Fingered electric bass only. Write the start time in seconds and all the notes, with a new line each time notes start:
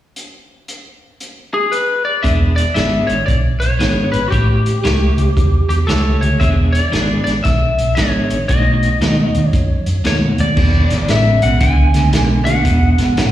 2.25 E1
2.76 G#1
3.09 G#1
3.28 B1
3.62 B1
3.80 G#1
4.13 G#1
4.32 A1
4.85 C#2
5.18 C#2
5.37 E2
5.70 E2
5.89 C#2
6.22 D2
6.41 E1
6.93 G#1
7.26 G#1
7.45 B1
7.78 B1
7.97 G#1
8.31 G#1
8.49 B1
9.01 D#2
9.35 D#2
9.53 F#2
9.86 F#2
10.05 D#2
10.38 D#2
10.57 E1
10.91 G#1
11.09 A1
11.42 B1
11.61 C#2
11.94 D2
12.12 B1
12.65 E1
12.98 G#1
13.17 A1